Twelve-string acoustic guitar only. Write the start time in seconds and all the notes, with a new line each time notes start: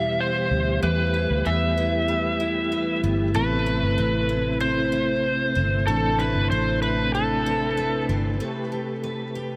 Already playing: E3 B3 E4 B4
0.83 E3
1.14 E4
1.45 B3
1.77 E4
2.08 B3
2.40 E4
2.72 B4
3.04 B3
3.34 A3
3.66 E4
3.98 C4
4.29 E4
4.60 C4
4.92 E4
5.55 C4
5.88 A3
6.19 E4
6.52 C4
6.82 E4
7.15 C4
7.46 E4
7.77 B4
8.09 C4
8.40 A3 B4
8.72 G4
9.04 B4
9.35 G4